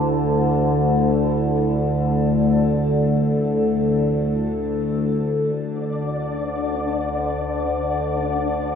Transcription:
0, 0, Header, 1, 4, 480
1, 0, Start_track
1, 0, Tempo, 500000
1, 8402, End_track
2, 0, Start_track
2, 0, Title_t, "Synth texture"
2, 0, Program_c, 0, 99
2, 5317, Note_on_c, 0, 62, 74
2, 5340, Note_on_c, 0, 74, 72
2, 8402, Note_off_c, 0, 62, 0
2, 8402, Note_off_c, 0, 74, 0
2, 8402, End_track
3, 0, Start_track
3, 0, Title_t, "Analog synth pad"
3, 0, Program_c, 1, 89
3, 0, Note_on_c, 1, 50, 75
3, 0, Note_on_c, 1, 57, 85
3, 0, Note_on_c, 1, 64, 61
3, 0, Note_on_c, 1, 69, 75
3, 5349, Note_off_c, 1, 57, 0
3, 5349, Note_on_c, 1, 62, 74
3, 5356, Note_off_c, 1, 50, 0
3, 6952, Note_on_c, 1, 76, 64
3, 8402, Note_off_c, 1, 62, 0
3, 8402, Note_off_c, 1, 64, 0
3, 8402, Note_off_c, 1, 69, 0
3, 8402, Note_off_c, 1, 76, 0
3, 8402, End_track
4, 0, Start_track
4, 0, Title_t, "Synth drone"
4, 0, Program_c, 2, 95
4, 0, Note_on_c, 2, 38, 82
4, 0, Note_on_c, 2, 50, 74
4, 5309, Note_off_c, 2, 38, 0
4, 5321, Note_on_c, 2, 38, 68
4, 5322, Note_off_c, 2, 50, 0
4, 5334, Note_on_c, 2, 50, 66
4, 8402, Note_off_c, 2, 38, 0
4, 8402, Note_off_c, 2, 50, 0
4, 8402, End_track
0, 0, End_of_file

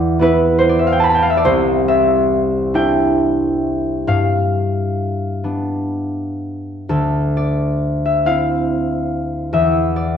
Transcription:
0, 0, Header, 1, 2, 480
1, 0, Start_track
1, 0, Tempo, 828729
1, 834, Tempo, 865801
1, 835, Time_signature, 6, 3, 24, 8
1, 1794, Tempo, 906344
1, 3234, Tempo, 990099
1, 3714, Tempo, 934579
1, 4194, Tempo, 853485
1, 5518, End_track
2, 0, Start_track
2, 0, Title_t, "Harp"
2, 0, Program_c, 0, 46
2, 0, Note_on_c, 0, 40, 68
2, 0, Note_on_c, 0, 64, 51
2, 0, Note_on_c, 0, 74, 96
2, 0, Note_on_c, 0, 76, 93
2, 112, Note_on_c, 0, 59, 53
2, 115, Note_off_c, 0, 64, 0
2, 122, Note_on_c, 0, 64, 59
2, 129, Note_on_c, 0, 71, 85
2, 339, Note_on_c, 0, 72, 74
2, 393, Note_off_c, 0, 74, 0
2, 400, Note_on_c, 0, 74, 70
2, 444, Note_off_c, 0, 72, 0
2, 451, Note_off_c, 0, 76, 0
2, 458, Note_on_c, 0, 76, 66
2, 486, Note_off_c, 0, 74, 0
2, 502, Note_on_c, 0, 77, 82
2, 528, Note_off_c, 0, 76, 0
2, 534, Note_on_c, 0, 79, 85
2, 562, Note_off_c, 0, 77, 0
2, 577, Note_on_c, 0, 81, 82
2, 590, Note_off_c, 0, 79, 0
2, 600, Note_on_c, 0, 83, 82
2, 625, Note_off_c, 0, 81, 0
2, 632, Note_on_c, 0, 81, 76
2, 653, Note_off_c, 0, 83, 0
2, 664, Note_on_c, 0, 79, 73
2, 689, Note_off_c, 0, 81, 0
2, 709, Note_on_c, 0, 77, 71
2, 729, Note_off_c, 0, 79, 0
2, 752, Note_on_c, 0, 76, 74
2, 777, Note_off_c, 0, 77, 0
2, 794, Note_on_c, 0, 74, 73
2, 824, Note_off_c, 0, 76, 0
2, 838, Note_on_c, 0, 72, 95
2, 841, Note_on_c, 0, 36, 72
2, 856, Note_off_c, 0, 40, 0
2, 856, Note_off_c, 0, 59, 0
2, 857, Note_off_c, 0, 71, 0
2, 869, Note_off_c, 0, 74, 0
2, 1079, Note_on_c, 0, 76, 89
2, 1555, Note_off_c, 0, 64, 0
2, 1555, Note_on_c, 0, 62, 44
2, 1560, Note_on_c, 0, 64, 48
2, 1562, Note_on_c, 0, 79, 92
2, 2272, Note_on_c, 0, 43, 59
2, 2275, Note_on_c, 0, 77, 81
2, 2287, Note_off_c, 0, 72, 0
2, 2289, Note_off_c, 0, 36, 0
2, 2291, Note_off_c, 0, 76, 0
2, 2292, Note_off_c, 0, 64, 0
2, 2990, Note_off_c, 0, 62, 0
2, 2993, Note_on_c, 0, 59, 34
2, 2996, Note_on_c, 0, 62, 39
2, 3603, Note_off_c, 0, 79, 0
2, 3719, Note_on_c, 0, 38, 52
2, 3722, Note_on_c, 0, 69, 64
2, 3737, Note_off_c, 0, 43, 0
2, 3737, Note_off_c, 0, 59, 0
2, 3965, Note_on_c, 0, 74, 73
2, 4287, Note_off_c, 0, 77, 0
2, 4328, Note_on_c, 0, 76, 61
2, 4440, Note_on_c, 0, 60, 36
2, 4445, Note_on_c, 0, 77, 67
2, 4448, Note_on_c, 0, 64, 41
2, 4528, Note_off_c, 0, 76, 0
2, 5052, Note_off_c, 0, 62, 0
2, 5158, Note_on_c, 0, 40, 51
2, 5162, Note_on_c, 0, 76, 76
2, 5175, Note_off_c, 0, 60, 0
2, 5175, Note_off_c, 0, 77, 0
2, 5176, Note_off_c, 0, 38, 0
2, 5177, Note_off_c, 0, 69, 0
2, 5394, Note_off_c, 0, 74, 0
2, 5401, Note_on_c, 0, 74, 70
2, 5518, Note_off_c, 0, 40, 0
2, 5518, Note_off_c, 0, 64, 0
2, 5518, Note_off_c, 0, 74, 0
2, 5518, Note_off_c, 0, 76, 0
2, 5518, End_track
0, 0, End_of_file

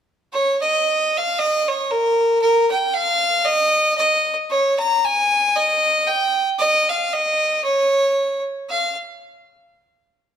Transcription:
0, 0, Header, 1, 2, 480
1, 0, Start_track
1, 0, Tempo, 530973
1, 271, Time_signature, 2, 2, 24, 8
1, 1707, Tempo, 520833
1, 6987, Tempo, 530973
1, 9471, End_track
2, 0, Start_track
2, 0, Title_t, "Fiddle"
2, 0, Program_c, 0, 110
2, 294, Note_on_c, 0, 73, 76
2, 530, Note_off_c, 0, 73, 0
2, 556, Note_on_c, 0, 75, 70
2, 1058, Note_on_c, 0, 77, 70
2, 1071, Note_off_c, 0, 75, 0
2, 1252, Note_on_c, 0, 75, 79
2, 1266, Note_off_c, 0, 77, 0
2, 1514, Note_on_c, 0, 73, 65
2, 1528, Note_off_c, 0, 75, 0
2, 1725, Note_on_c, 0, 70, 69
2, 1738, Note_off_c, 0, 73, 0
2, 2185, Note_off_c, 0, 70, 0
2, 2191, Note_on_c, 0, 70, 90
2, 2432, Note_off_c, 0, 70, 0
2, 2464, Note_on_c, 0, 79, 66
2, 2677, Note_on_c, 0, 77, 86
2, 2691, Note_off_c, 0, 79, 0
2, 3145, Note_on_c, 0, 75, 100
2, 3159, Note_off_c, 0, 77, 0
2, 3621, Note_off_c, 0, 75, 0
2, 3626, Note_on_c, 0, 75, 78
2, 3973, Note_off_c, 0, 75, 0
2, 4114, Note_on_c, 0, 73, 75
2, 4358, Note_off_c, 0, 73, 0
2, 4383, Note_on_c, 0, 82, 76
2, 4617, Note_on_c, 0, 80, 84
2, 4630, Note_off_c, 0, 82, 0
2, 5088, Note_on_c, 0, 75, 84
2, 5102, Note_off_c, 0, 80, 0
2, 5563, Note_on_c, 0, 79, 75
2, 5576, Note_off_c, 0, 75, 0
2, 5925, Note_off_c, 0, 79, 0
2, 6039, Note_on_c, 0, 75, 96
2, 6318, Note_on_c, 0, 77, 72
2, 6331, Note_off_c, 0, 75, 0
2, 6537, Note_on_c, 0, 75, 78
2, 6551, Note_off_c, 0, 77, 0
2, 7000, Note_off_c, 0, 75, 0
2, 7005, Note_on_c, 0, 73, 82
2, 7699, Note_off_c, 0, 73, 0
2, 7960, Note_on_c, 0, 77, 64
2, 8198, Note_off_c, 0, 77, 0
2, 9471, End_track
0, 0, End_of_file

